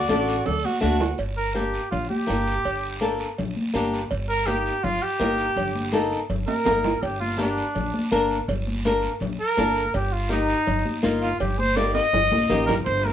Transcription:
Already playing: D5
0.09 A1 A3 D4 F#4 A4, cowbell, high conga, short guiro
0.28 short guiro
0.46 D2 A4, cowbell, high conga, low conga, high timbale, long guiro
0.65 F#4, high conga
0.81 D2 A3 D4 F#4, cowbell, high conga, short guiro
1.00 low timbale, short guiro
1.18 G1, cowbell, high conga, long guiro
1.37 A#4
1.54 A#3 D4 G4, cowbell, high conga, short guiro
1.74 short guiro
1.91 A#1 F4, cowbell, high conga, low conga, long guiro
2.09 G4, high conga
2.27 G1 A#3 D4 G4, cowbell, high conga, low timbale, short guiro
2.47 short guiro
2.65 G1, cowbell, high conga, long guiro
3.01 A#3 D4 A4, cowbell, high conga, short guiro
3.19 short guiro
3.38 A#1, cowbell, high conga, low conga, long guiro
3.56 high conga
3.74 G1 A#3 D4 G4, cowbell, high conga, short guiro
3.94 short guiro
4.11 G1, cowbell, long guiro
4.28 A#4
4.46 A#3 D#4 G4, cowbell, high conga, short guiro
4.66 short guiro
4.83 G1 F4, cowbell, high conga, low conga, long guiro
5.02 G4
5.19 G1 A#3 D#4 A#4, cowbell, high conga, low timbale, short guiro
5.38 short guiro
5.56 G1, cowbell, high conga, low conga, long guiro
5.75 high conga
5.92 A#3 D#4 A4, cowbell, high conga, short guiro
6.12 short guiro
6.30 G1, cowbell, high conga, low conga, long guiro
6.47 A#4, high conga, high timbale
6.65 G1 A#3 D#4 A#4, cowbell, high conga, low conga, high timbale, short guiro
6.84 low timbale, short guiro
7.03 G1 G4, cowbell, high conga, long guiro
7.20 F4, high conga
7.38 A#3 D4 G4, cowbell, high conga, short guiro
7.57 short guiro
7.75 A#1, cowbell, high conga, low conga, long guiro
7.94 high conga
8.12 G1 A#3 D4 A#4, cowbell, high conga, short guiro
8.30 short guiro
8.48 G1, cowbell, high conga, low conga, long guiro
8.67 high conga
8.84 A#3 D4 A#4, cowbell, high conga, short guiro
9.02 short guiro
9.20 A#1, cowbell, high conga, low conga, long guiro
9.40 A#4
9.57 G1 A#3 D4 A4, cowbell, high conga, low timbale, short guiro
9.75 short guiro
9.94 G1 G4, cowbell, long guiro
10.12 F4
10.29 A#3 D#4 G4, cowbell, high conga, short guiro
10.49 short guiro
10.67 G1, cowbell, high conga, low conga, long guiro
10.85 high conga
11.03 G1 A#3 D#4 F4, cowbell, high conga, short guiro
11.22 F4, short guiro
11.40 G1 G4, cowbell, high conga, low conga, long guiro
11.59 C5, high conga
11.76 A#3 D#4 G4 D5, cowbell, high conga, high timbale, short guiro
11.94 D#5, high timbale, short guiro
12.13 G1, cowbell, high conga, low conga, low timbale, long guiro
12.32 A#1, high conga, low timbale
12.49 A1 A#3 D#4 G4, cowbell, low conga, short guiro
12.66 G1 A#4, low conga, low timbale, short guiro
12.85 G1 C5, high conga, high timbale, long guiro
13.05 A#4, high conga

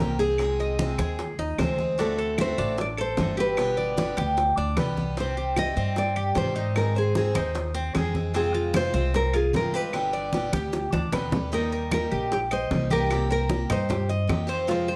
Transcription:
Already playing: A#4
0.00 C2 C3 D#3 A#3 C4 G4, high conga
0.19 A#3 C4 G4 G#4
0.38 C3 D#3 G#3 C4 G#4, high bongo, high conga, claves
0.59 D#5, high bongo, high conga
0.79 C3 D#3 G#3 C4 G#4, high bongo, high conga
0.98 D#2 G#3 C4 G#4, high bongo, high conga, claves
1.19 muted steel-string acoustic guitar stroke, high bongo, high conga
1.39 D#2 D#4, high bongo, high conga
1.58 D2 C3 D#3 G#3 C4 G#4 C5, high bongo, low bongo, high conga, claves
1.78 G#3 C4 G#4, high conga
1.98 D3 A3 C4 D4 F#4 A4, high bongo, high conga
2.18 A4, high conga
2.38 D3 A3 C4 F#4 C5, high bongo, high conga, claves
2.58 A1 A3 C4 D4 F#4, high conga
2.77 D5, muted steel-string acoustic guitar stroke, high bongo, high conga
2.98 A4 C5, high conga, claves
3.17 G1 D3 A3 C4 F#4, high bongo, low bongo, high conga
3.37 A3 C4 F#4 G4 B4
3.57 B2 D3 G3 B3 G4, high bongo, high conga, claves
3.77 D5, high bongo, high conga
3.97 B2 D3 G3 B3 G4, high bongo, high conga
4.17 D2 G3 B3 G4, high bongo, high conga, claves
4.37 muted steel-string acoustic guitar stroke, high bongo, high conga
4.57 D2 D4, high bongo, high conga
4.77 C2 B2 D3 G3 B3 G4 B4, high bongo, low bongo, high conga, claves
4.97 G3 B3 G4, high conga
5.17 C3 D#3 G3 C4 G4 C5, high bongo, high conga
5.37 G4, high conga
5.56 C3 D#3 G3 C4 G4 D#5, high bongo, high conga, claves
5.76 G2 G3 C4 G4, high conga
5.96 D5, muted steel-string acoustic guitar stroke, high bongo, high conga
6.16 G4, high conga, claves
6.35 G#2 C3 D#3 G3 C4 G4 C5, high bongo, low bongo, high conga
6.55 G3 C4 D#4 G4
6.75 D#3 G#3 C4 G#4 A#4, high bongo, high conga, claves
6.95 G#4 C5, high bongo, high conga
7.15 D#3 G#3 C4 G#4, high bongo, high conga
7.34 D#2 G#3 C4 D#4 G#4 C5, high bongo, high conga, claves
7.55 muted steel-string acoustic guitar stroke, high bongo, high conga
7.75 C4, high bongo, high conga
7.95 F2 D#3 G#3 C4 G#4, high bongo, low bongo, high conga, claves
8.14 G#3 C4 G#4, high conga
8.34 C3 D#3 G#3 C4 F4 G#4, high bongo
8.54 F4, high conga
8.73 C3 D#3 G#3 C4 F4 C5, high bongo, high conga, claves
8.94 C2 G#3 C4 F4, high conga
9.14 A#4, muted steel-string acoustic guitar stroke, high bongo, high conga
9.33 F4 G#4, high conga, claves
9.53 G1 C3 D#3 G#3 C4 F4 A#4, high bongo, low bongo, high conga
9.74 G#3 C4 F4 G4 B4
9.93 B2 D3 G3 B3 G4, high bongo, high conga, claves
10.13 D5, high bongo, high conga
10.33 B2 D3 G3 B3 G4, high bongo, high conga
10.53 D2 G3 B3 G4, high bongo, high conga, claves
10.72 muted steel-string acoustic guitar stroke, high bongo, high conga
10.93 D2 D4, high bongo, high conga
11.12 D#2 B2 D3 G3 B3 G4 B4, low bongo, low conga, claves
11.32 G3 B3 G4, low bongo, low conga
11.52 D#3 G3 A#3 D#4 G4 A#4, high bongo, high conga
11.72 A#4, high conga
11.91 G3 A#3 D#4 G4 A#4, high bongo, high conga, claves
12.12 A#1 G4, high conga
12.31 G4, muted steel-string acoustic guitar stroke, high bongo, high conga
12.51 C5 D#5, high conga, claves
12.71 C2 G3 A#3 D#4 G4, high bongo, low bongo, high conga
12.90 G3 A#3 D#4 G4 A#4, high conga
13.10 C3 D#3 A#3 C4 G4, high bongo, high conga, claves
13.30 A#4, high bongo, high conga
13.49 D#3 A#3 C4 G4, high bongo, high conga
13.70 G2 D#4 C5, high bongo, high conga, low conga, claves
13.89 G4, muted steel-string acoustic guitar stroke, high bongo, high conga, low conga
14.09 D#5, high bongo, high conga
14.27 F2 D#3 A#3 C4 G4, high bongo, low bongo, high conga, claves
14.47 D#3 A#3 C4 G4 C5
14.67 C3 F3 G#3 C4 F4 C5, high bongo, high conga
14.88 C5, high conga

